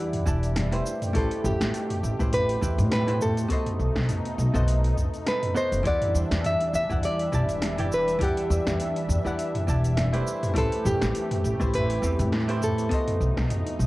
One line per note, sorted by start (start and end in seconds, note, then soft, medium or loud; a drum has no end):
0.00 0.20 E2 medium
0.00 0.24 E3 medium
0.00 0.81 E3 medium
0.00 0.82 G3 medium
0.00 0.82 D4 medium
0.00 0.24 E4 medium
0.00 0.84 E4 medium
0.00 0.24 G4 medium
0.00 0.24 D5 medium
0.00 0.25 F#5 medium
0.13 mid tom medium
0.13 open hi-hat soft
0.26 0.79 E1 loud
0.26 0.68 E3 medium
0.26 0.68 E4 medium
0.26 0.68 G4 medium
0.26 0.69 D5 medium
0.26 0.69 A5 medium
0.26 kick loud
0.26 cabasa medium
0.43 open hi-hat soft
0.43 cabasa soft
0.56 snare medium
0.56 mid tom medium
0.56 open hi-hat medium
0.56 cabasa soft
0.71 1.11 A3 medium
0.71 1.12 E4 medium
0.71 1.12 G4 medium
0.71 1.12 B4 medium
0.71 1.12 C5 medium
0.71 open hi-hat soft
0.86 5.82 B2 medium
0.86 5.82 A3 medium
0.86 3.48 G4 medium
0.86 cabasa medium
1.02 mid tom medium
1.02 open hi-hat soft
1.02 cabasa soft
1.13 1.26 A1 loud
1.13 2.15 A3 loud
1.13 2.15 E4 medium
1.13 2.16 G4 medium
1.13 1.43 A4 loud
1.13 2.16 B4 medium
1.13 kick loud
1.13 open hi-hat medium
1.13 cabasa soft
1.18 2.17 C5 loud
1.31 open hi-hat soft
1.44 1.55 A1 medium
1.44 2.29 G4 medium
1.44 mid tom medium
1.44 cabasa medium
1.61 1.69 A1 medium
1.61 snare medium
1.61 open hi-hat soft
1.61 cabasa soft
1.74 open hi-hat medium
1.74 cabasa soft
1.90 mid tom medium
1.90 open hi-hat soft
2.03 2.14 A1 medium
2.03 cabasa medium
2.19 2.55 A1 medium
2.19 2.59 A3 medium
2.19 2.59 E4 medium
2.19 2.60 G4 medium
2.19 2.60 B4 medium
2.19 2.60 C5 medium
2.19 kick loud
2.19 cabasa soft
2.32 2.88 B4 loud
2.32 mid tom medium
2.32 open hi-hat medium
2.32 cabasa soft
2.49 open hi-hat soft
2.61 2.79 E2 medium
2.61 3.03 A3 medium
2.61 3.04 E4 medium
2.61 3.04 G4 medium
2.61 3.04 B4 medium
2.61 3.04 C5 medium
2.61 kick medium
2.61 cabasa medium
2.78 3.43 A2 loud
2.78 mid tom medium
2.78 open hi-hat soft
2.78 cabasa soft
2.91 3.22 B4 loud
2.91 snare medium
2.91 open hi-hat medium
2.91 cabasa soft
3.07 3.47 A3 medium
3.07 3.47 E4 medium
3.07 3.47 G4 medium
3.07 3.48 B4 medium
3.07 3.48 C5 medium
3.07 open hi-hat soft
3.21 4.35 A4 medium
3.21 mid tom medium
3.21 cabasa medium
3.37 open hi-hat soft
3.37 cabasa soft
3.48 4.50 B3 loud
3.48 5.83 D#4 medium
3.48 4.51 F#4 medium
3.48 4.51 A4 medium
3.48 4.52 C5 loud
3.48 kick loud
3.48 open hi-hat medium
3.48 cabasa soft
3.53 4.52 D#5 loud
3.66 mid tom medium
3.66 open hi-hat soft
3.79 3.91 B1 medium
3.79 cabasa medium
3.96 4.05 B1 medium
3.96 kick medium
3.96 snare medium
3.96 open hi-hat soft
3.96 cabasa soft
4.09 mid tom medium
4.09 open hi-hat medium
4.09 cabasa soft
4.25 open hi-hat soft
4.38 4.49 B1 medium
4.38 cabasa medium
4.54 4.90 B1 medium
4.54 4.94 B3 medium
4.54 4.94 F#4 medium
4.54 4.95 A4 medium
4.54 4.95 C5 medium
4.54 4.95 D#5 medium
4.54 mid tom medium
4.54 cabasa soft
4.68 open hi-hat medium
4.68 cabasa soft
4.84 open hi-hat soft
4.97 kick loud
4.97 mid tom medium
4.97 cabasa medium
5.14 open hi-hat soft
5.14 cabasa soft
5.27 5.55 B4 medium
5.27 snare medium
5.27 open hi-hat medium
5.27 cabasa soft
5.43 mid tom medium
5.43 open hi-hat soft
5.55 5.82 B3 medium
5.55 5.82 F#4 medium
5.55 5.82 A4 medium
5.55 5.83 C5 medium
5.55 5.87 C5 medium
5.55 5.83 D#5 loud
5.55 cabasa medium
5.72 5.81 F#1 medium
5.72 open hi-hat soft
5.72 cabasa soft
5.83 5.97 E2 loud
5.83 6.85 E3 loud
5.83 10.23 E3 medium
5.83 10.23 G3 medium
5.83 10.23 D4 medium
5.83 6.86 E4 medium
5.83 6.86 G4 medium
5.83 6.87 D5 medium
5.83 10.23 E5 medium
5.83 kick loud
5.83 open hi-hat medium
5.83 cabasa soft
5.87 6.41 D5 loud
5.87 6.87 F#5 loud
6.02 mid tom medium
6.02 open hi-hat soft
6.15 6.26 E2 medium
6.15 cabasa medium
6.31 6.40 E2 medium
6.31 snare medium
6.31 open hi-hat soft
6.31 cabasa soft
6.44 6.73 E5 loud
6.44 mid tom medium
6.44 open hi-hat medium
6.44 cabasa soft
6.61 open hi-hat soft
6.73 6.85 E2 medium
6.73 7.05 E5 loud
6.73 cabasa medium
6.89 7.26 E2 medium
6.89 7.30 E3 medium
6.89 7.30 E4 medium
6.89 7.30 G4 medium
6.89 7.31 D5 medium
6.89 7.31 F#5 medium
6.89 kick loud
6.89 mid tom medium
6.89 cabasa soft
7.03 7.94 D5 loud
7.03 open hi-hat medium
7.03 cabasa soft
7.19 open hi-hat soft
7.32 7.49 B1 medium
7.32 7.74 E3 medium
7.32 7.74 E4 medium
7.32 7.75 G4 medium
7.32 7.75 D5 medium
7.32 7.75 A5 medium
7.32 kick medium
7.32 mid tom medium
7.32 cabasa medium
7.49 8.14 E1 loud
7.49 open hi-hat soft
7.49 cabasa soft
7.62 snare medium
7.62 open hi-hat medium
7.62 cabasa soft
7.78 8.17 E3 medium
7.78 8.18 E4 medium
7.78 8.18 G4 medium
7.78 8.18 D5 medium
7.78 8.19 G5 medium
7.78 mid tom medium
7.78 open hi-hat soft
7.92 8.20 B4 medium
7.92 cabasa medium
8.08 open hi-hat soft
8.08 cabasa soft
8.19 9.20 E3 loud
8.19 9.21 E4 medium
8.19 9.22 G4 medium
8.19 9.22 D5 loud
8.19 kick loud
8.19 mid tom medium
8.19 open hi-hat medium
8.19 cabasa soft
8.23 9.06 G4 medium
8.23 9.23 F#5 loud
8.37 open hi-hat soft
8.50 8.61 E2 medium
8.50 cabasa medium
8.67 8.75 E2 medium
8.67 kick medium
8.67 snare medium
8.67 mid tom medium
8.67 open hi-hat soft
8.67 cabasa soft
8.80 open hi-hat medium
8.80 cabasa soft
8.96 open hi-hat soft
9.09 9.20 E2 medium
9.09 mid tom medium
9.09 cabasa medium
9.24 9.61 E2 medium
9.24 9.65 E3 medium
9.24 9.65 E4 medium
9.24 9.65 G4 medium
9.24 9.66 D5 medium
9.24 9.66 F#5 medium
9.24 cabasa soft
9.39 open hi-hat medium
9.39 cabasa soft
9.55 mid tom medium
9.55 open hi-hat soft
9.67 10.20 E1 medium
9.67 10.09 E3 medium
9.67 10.10 E4 medium
9.67 10.10 G4 medium
9.67 10.10 D5 medium
9.67 10.10 A5 medium
9.67 kick loud
9.67 cabasa medium
9.84 open hi-hat soft
9.84 cabasa soft
9.97 snare medium
9.97 mid tom medium
9.97 open hi-hat medium
9.97 cabasa soft
10.13 10.52 A3 medium
10.13 10.53 E4 medium
10.13 10.53 G4 medium
10.13 10.53 B4 medium
10.13 10.54 C5 medium
10.13 open hi-hat soft
10.26 13.87 E3 medium
10.26 13.87 A3 medium
10.26 12.89 G4 medium
10.26 cabasa medium
10.43 mid tom medium
10.43 open hi-hat soft
10.43 cabasa soft
10.54 10.67 A1 loud
10.54 11.56 A3 loud
10.54 11.56 E4 loud
10.54 11.57 G4 medium
10.54 11.57 B4 medium
10.54 kick loud
10.54 open hi-hat medium
10.54 cabasa soft
10.58 10.87 A4 loud
10.58 11.58 C5 loud
10.72 open hi-hat soft
10.85 10.96 A1 medium
10.85 11.77 G4 medium
10.85 mid tom medium
10.85 cabasa medium
11.02 11.11 A1 medium
11.02 snare medium
11.02 open hi-hat soft
11.02 cabasa soft
11.15 open hi-hat medium
11.15 cabasa soft
11.31 mid tom medium
11.31 open hi-hat soft
11.44 11.55 A1 medium
11.44 cabasa medium
11.60 11.96 A1 medium
11.60 12.00 A3 medium
11.60 12.00 E4 medium
11.60 12.01 G4 medium
11.60 12.01 B4 medium
11.60 12.01 C5 medium
11.60 kick loud
11.60 cabasa soft
11.74 12.63 B4 loud
11.74 mid tom medium
11.74 open hi-hat medium
11.74 cabasa soft
11.90 open hi-hat soft
12.02 12.21 E2 medium
12.02 12.44 A3 medium
12.02 12.46 C4 medium
12.02 12.45 E4 medium
12.02 12.45 G4 medium
12.02 12.45 B4 medium
12.02 kick medium
12.02 cabasa medium
12.19 12.85 A2 loud
12.19 mid tom medium
12.19 open hi-hat soft
12.19 cabasa soft
12.32 snare medium
12.32 open hi-hat medium
12.32 cabasa soft
12.48 12.88 A3 medium
12.48 12.88 E4 medium
12.48 12.88 G4 medium
12.48 12.89 B4 medium
12.48 12.89 C5 loud
12.48 open hi-hat soft
12.62 13.18 A4 medium
12.62 mid tom medium
12.62 cabasa medium
12.78 open hi-hat soft
12.78 cabasa soft
12.89 13.87 B3 loud
12.89 13.87 D#4 medium
12.89 13.87 F#4 loud
12.89 13.87 A4 medium
12.89 13.87 C5 loud
12.89 kick loud
12.89 open hi-hat medium
12.89 cabasa soft
12.94 13.87 D#5 loud
13.08 mid tom medium
13.08 open hi-hat soft
13.21 13.32 B1 medium
13.21 cabasa medium
13.37 13.46 B1 medium
13.37 kick medium
13.37 snare medium
13.37 open hi-hat soft
13.37 cabasa soft
13.50 mid tom medium
13.50 open hi-hat medium
13.50 cabasa soft
13.66 open hi-hat soft
13.79 13.87 B1 medium
13.79 cabasa medium